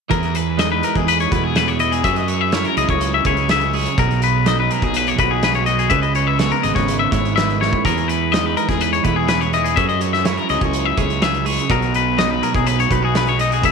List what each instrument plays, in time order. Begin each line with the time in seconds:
0.10 fingered electric bass E2, clean electric guitar E3 G#4 A#4, kick, closed hi-hat
0.23 closed hi-hat
0.35 clean electric guitar B4, closed hi-hat
0.58 clean electric guitar G#3 D#4 D#5, snare, closed hi-hat
0.72 clean electric guitar B4
0.83 clean electric guitar A#4 B4, closed hi-hat
0.95 fingered electric bass E2, clean electric guitar G#4, kick, closed hi-hat
1.08 clean electric guitar B4, closed hi-hat
1.20 clean electric guitar C#5, closed hi-hat
1.31 fingered electric bass E2, clean electric guitar B2 E4 B4, kick, closed hi-hat
1.44 clean electric guitar G#4
1.56 clean electric guitar G#4 B4, snare, closed hi-hat
1.68 clean electric guitar C#5, closed hi-hat
1.79 clean electric guitar E4 D#5, closed hi-hat
1.92 clean electric guitar G#4, closed hi-hat
2.04 fingered electric bass F#2, clean electric guitar F#3 G#4 E5, kick, closed hi-hat
2.16 clean electric guitar D#5, closed hi-hat
2.28 clean electric guitar C#5, closed hi-hat
2.41 clean electric guitar E5
2.52 clean electric guitar C#4 E4 C#5, snare, closed hi-hat
2.64 clean electric guitar A#4, closed hi-hat
2.77 fingered electric bass C#2, clean electric guitar G#4 D#5, closed hi-hat
2.89 fingered electric bass C#2, clean electric guitar C#5, kick, closed hi-hat
3.01 closed hi-hat
3.14 clean electric guitar E5
3.25 fingered electric bass C#2, clean electric guitar C#3 G#4 C#5, kick, closed hi-hat
3.37 closed hi-hat
3.49 clean electric guitar G#4 E5, snare, closed hi-hat
3.61 closed hi-hat
3.73 clean electric guitar G#4 C#5, open hi-hat
3.86 closed hi-hat
3.98 fingered electric bass B1, clean electric guitar B2 G#4 A#4, kick, closed hi-hat
4.11 closed hi-hat
4.22 clean electric guitar B4, closed hi-hat
4.46 clean electric guitar F#3 D#4 D#5, snare, closed hi-hat
4.60 clean electric guitar B4
4.70 clean electric guitar G#4 A#4, closed hi-hat
4.82 fingered electric bass B1, clean electric guitar G#4, kick, closed hi-hat
4.94 clean electric guitar B4, closed hi-hat
5.07 clean electric guitar C#5, closed hi-hat
5.18 fingered electric bass B1, clean electric guitar B2 F#4 B4, kick, closed hi-hat
5.31 clean electric guitar G#4
5.43 clean electric guitar G#4 B4, snare, closed hi-hat
5.54 clean electric guitar C#5, closed hi-hat
5.66 clean electric guitar F#4 D#5, closed hi-hat
5.79 clean electric guitar G#4, closed hi-hat
5.90 fingered electric bass C#2, clean electric guitar C#3 B4 E5, kick, closed hi-hat
6.02 clean electric guitar D#5, closed hi-hat
6.15 clean electric guitar C#5, closed hi-hat
6.27 clean electric guitar E5
6.39 clean electric guitar G#3 B3 C#5, snare, closed hi-hat
6.51 clean electric guitar A#4, closed hi-hat
6.63 fingered electric bass G#1, clean electric guitar G#4 D#5, closed hi-hat
6.75 fingered electric bass G#1, clean electric guitar B4 C#5, kick, snare, closed hi-hat
6.88 closed hi-hat
6.99 clean electric guitar E5
7.11 fingered electric bass G#1, clean electric guitar G#2 E4 C#5, kick, closed hi-hat
7.25 closed hi-hat
7.36 clean electric guitar B4 E5, snare, closed hi-hat
7.50 closed hi-hat
7.61 clean electric guitar E4 C#5, snare
7.73 kick
7.85 fingered electric bass E2, clean electric guitar E3 G#4 A#4, kick, closed hi-hat
7.97 closed hi-hat
8.08 clean electric guitar B4, closed hi-hat
8.32 clean electric guitar G#3 D#4 D#5, snare, closed hi-hat
8.46 clean electric guitar B4
8.57 clean electric guitar A#4 B4, closed hi-hat
8.69 fingered electric bass E2, clean electric guitar G#4, kick, snare, closed hi-hat
8.81 clean electric guitar B4, closed hi-hat
8.93 clean electric guitar C#5, closed hi-hat
9.04 fingered electric bass E2, clean electric guitar B2 E4 B4, kick, closed hi-hat
9.16 clean electric guitar G#4
9.28 clean electric guitar G#4 B4, snare, closed hi-hat
9.41 clean electric guitar C#5, closed hi-hat
9.53 clean electric guitar E4 D#5, closed hi-hat
9.64 clean electric guitar G#4, closed hi-hat
9.76 fingered electric bass F#2, clean electric guitar F#3 G#4 E5, kick, closed hi-hat
9.89 clean electric guitar D#5, closed hi-hat
10.01 clean electric guitar C#5, closed hi-hat
10.13 clean electric guitar E5, snare
10.25 clean electric guitar C#4 E4 C#5, snare, closed hi-hat
10.37 clean electric guitar A#4, closed hi-hat
10.49 fingered electric bass C#2, clean electric guitar G#4 D#5, snare, closed hi-hat
10.61 fingered electric bass C#2, clean electric guitar C#5, kick, closed hi-hat
10.73 closed hi-hat
10.85 clean electric guitar E5
10.97 fingered electric bass C#2, clean electric guitar C#3 G#4 C#5, kick, closed hi-hat
11.10 closed hi-hat
11.21 clean electric guitar G#4 E5, snare, closed hi-hat
11.34 closed hi-hat
11.46 clean electric guitar G#4 C#5, open hi-hat
11.59 closed hi-hat
11.70 fingered electric bass B1, clean electric guitar B2 G#4 A#4, kick, closed hi-hat
11.82 closed hi-hat
11.94 clean electric guitar B4, closed hi-hat
12.18 clean electric guitar F#3 D#4 D#5, snare, closed hi-hat
12.31 clean electric guitar B4
12.42 clean electric guitar G#4 A#4, closed hi-hat
12.55 fingered electric bass B1, clean electric guitar G#4, kick, closed hi-hat
12.67 clean electric guitar B4, closed hi-hat
12.79 clean electric guitar C#5, closed hi-hat
12.90 fingered electric bass B1, clean electric guitar B2 D#4 B4, kick, closed hi-hat
13.03 clean electric guitar F#4 G#4
13.15 clean electric guitar G#4 B4, snare, closed hi-hat
13.27 clean electric guitar C#5, closed hi-hat
13.39 clean electric guitar D#4 D#5, closed hi-hat
13.51 clean electric guitar F#4 G#4, closed hi-hat
13.63 fingered electric bass C#2, clean electric guitar C#3 G#4 E5, kick, closed hi-hat